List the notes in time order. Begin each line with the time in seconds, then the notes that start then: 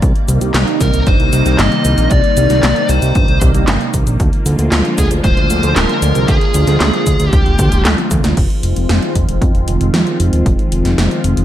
Already playing: A#3
0.02 C2 C3 D#3 G3 D#4, kick, closed hi-hat, cabasa
0.16 closed hi-hat
0.28 C2, closed hi-hat, cabasa
0.41 C2, closed hi-hat, cabasa
0.54 C2, snare, clap, closed hi-hat, cabasa
0.67 closed hi-hat
0.81 C2 A#4, kick, snare, closed hi-hat, cabasa
0.94 C2, closed hi-hat, cabasa
1.07 G1 C5, kick, closed hi-hat, cabasa
1.20 C2, closed hi-hat
1.33 C2, closed hi-hat, cabasa
1.46 C2, closed hi-hat, cabasa
1.59 G1 D#5, snare, clap, closed hi-hat, cabasa
1.72 closed hi-hat
1.85 C2, closed hi-hat, cabasa
1.98 A#1, closed hi-hat, cabasa
2.11 C2 D5, kick, closed hi-hat, cabasa
2.24 closed hi-hat
2.37 C2, closed hi-hat, cabasa
2.50 C2, snare, closed hi-hat, cabasa
2.63 C2, snare, clap, closed hi-hat, cabasa
2.76 closed hi-hat
2.89 C2 C5, closed hi-hat, cabasa
3.02 C2, closed hi-hat, cabasa
3.15 G1, kick, closed hi-hat, cabasa
3.28 C2, closed hi-hat
3.41 C2, kick, closed hi-hat, cabasa
3.55 C2, closed hi-hat, cabasa
3.68 G1, snare, clap, closed hi-hat, cabasa
3.81 closed hi-hat
3.94 C2, kick, closed hi-hat, cabasa
4.07 A#1, closed hi-hat, cabasa
4.20 D2 D3 F3 G#3 F4, kick, closed hi-hat, cabasa
4.33 closed hi-hat
4.46 D2, closed hi-hat, cabasa
4.59 D2, closed hi-hat, cabasa
4.72 D2, snare, clap, closed hi-hat, cabasa
4.85 closed hi-hat
4.98 D2 G#4, kick, snare, closed hi-hat, cabasa
5.11 D2, closed hi-hat, cabasa
5.24 D1 C5, kick, closed hi-hat, cabasa
5.37 D2, closed hi-hat
5.50 D2, closed hi-hat, cabasa
5.63 D2, closed hi-hat, cabasa
5.76 D1 A#4, snare, clap, closed hi-hat, cabasa
5.89 closed hi-hat
6.02 D2, closed hi-hat, cabasa
6.15 C2, closed hi-hat, cabasa
6.28 D2 G#4, kick, closed hi-hat, cabasa
6.41 closed hi-hat
6.54 D2, closed hi-hat, cabasa
6.67 D2, snare, closed hi-hat, cabasa
6.80 D2, snare, clap, closed hi-hat, cabasa
6.93 closed hi-hat
7.07 D2, kick, closed hi-hat, cabasa
7.20 D2, closed hi-hat, cabasa
7.27 G4
7.33 D1, kick, closed hi-hat, cabasa
7.46 D1, closed hi-hat
7.59 D2, kick, closed hi-hat, cabasa
7.72 D1, closed hi-hat, cabasa
7.85 D2, snare, clap, closed hi-hat, cabasa
7.98 closed hi-hat, high tom
8.11 D2, kick, closed hi-hat, mid tom, cabasa
8.24 D2, snare, closed hi-hat, cabasa
8.37 F1 D#3 F3 G#3 C4 F4, kick, closed hi-hat, crash
8.50 closed hi-hat
8.63 F1, closed hi-hat
8.76 F1, closed hi-hat
8.89 F1, snare, closed hi-hat
9.02 closed hi-hat
9.15 F1, kick, closed hi-hat
9.29 F1, closed hi-hat
9.42 F2, kick, closed hi-hat
9.55 F1, closed hi-hat
9.68 F1, closed hi-hat
9.81 F1, closed hi-hat
9.94 F2, snare, closed hi-hat
10.07 closed hi-hat
10.20 F1, closed hi-hat
10.33 D#1, closed hi-hat
10.46 F1, kick, closed hi-hat
10.59 closed hi-hat
10.72 F1, closed hi-hat
10.85 F1, snare, closed hi-hat
10.98 F1, snare, closed hi-hat
11.11 closed hi-hat
11.24 F1, closed hi-hat
11.37 F1, closed hi-hat